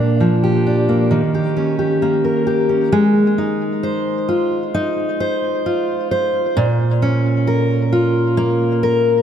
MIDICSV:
0, 0, Header, 1, 2, 480
1, 0, Start_track
1, 0, Key_signature, -4, "major"
1, 0, Tempo, 909091
1, 1549, Time_signature, 4, 2, 24, 8
1, 4868, End_track
2, 0, Start_track
2, 0, Title_t, "Steel-string acoustic guitar"
2, 0, Program_c, 0, 25
2, 0, Note_on_c, 0, 46, 65
2, 0, Note_on_c, 0, 58, 48
2, 0, Note_on_c, 0, 62, 46
2, 0, Note_on_c, 0, 67, 49
2, 108, Note_on_c, 0, 53, 51
2, 124, Note_off_c, 0, 67, 0
2, 230, Note_on_c, 0, 67, 50
2, 344, Note_off_c, 0, 62, 0
2, 351, Note_on_c, 0, 62, 45
2, 467, Note_off_c, 0, 58, 0
2, 469, Note_on_c, 0, 58, 44
2, 585, Note_on_c, 0, 51, 62
2, 636, Note_off_c, 0, 46, 0
2, 637, Note_off_c, 0, 53, 0
2, 637, Note_off_c, 0, 58, 0
2, 638, Note_off_c, 0, 62, 0
2, 638, Note_off_c, 0, 67, 0
2, 710, Note_on_c, 0, 67, 47
2, 827, Note_on_c, 0, 61, 44
2, 937, Note_off_c, 0, 67, 0
2, 944, Note_on_c, 0, 67, 47
2, 1067, Note_on_c, 0, 58, 54
2, 1185, Note_on_c, 0, 70, 49
2, 1296, Note_off_c, 0, 67, 0
2, 1302, Note_on_c, 0, 67, 48
2, 1415, Note_off_c, 0, 61, 0
2, 1421, Note_on_c, 0, 61, 41
2, 1542, Note_off_c, 0, 58, 0
2, 1544, Note_on_c, 0, 56, 83
2, 1593, Note_off_c, 0, 61, 0
2, 1594, Note_off_c, 0, 67, 0
2, 1595, Note_off_c, 0, 70, 0
2, 1785, Note_on_c, 0, 63, 57
2, 2024, Note_on_c, 0, 72, 68
2, 2263, Note_on_c, 0, 65, 60
2, 2279, Note_off_c, 0, 51, 0
2, 2499, Note_off_c, 0, 63, 0
2, 2505, Note_on_c, 0, 63, 75
2, 2741, Note_off_c, 0, 72, 0
2, 2747, Note_on_c, 0, 72, 64
2, 2987, Note_off_c, 0, 65, 0
2, 2989, Note_on_c, 0, 65, 65
2, 3221, Note_off_c, 0, 72, 0
2, 3228, Note_on_c, 0, 72, 66
2, 3467, Note_off_c, 0, 56, 0
2, 3467, Note_on_c, 0, 46, 87
2, 3515, Note_off_c, 0, 63, 0
2, 3516, Note_off_c, 0, 72, 0
2, 3708, Note_on_c, 0, 61, 60
2, 3946, Note_on_c, 0, 70, 67
2, 4182, Note_off_c, 0, 65, 0
2, 4184, Note_on_c, 0, 65, 64
2, 4421, Note_on_c, 0, 58, 73
2, 4660, Note_off_c, 0, 70, 0
2, 4663, Note_on_c, 0, 70, 70
2, 4868, Note_off_c, 0, 46, 0
2, 4868, Note_off_c, 0, 58, 0
2, 4868, Note_off_c, 0, 61, 0
2, 4868, Note_off_c, 0, 65, 0
2, 4868, Note_off_c, 0, 70, 0
2, 4868, End_track
0, 0, End_of_file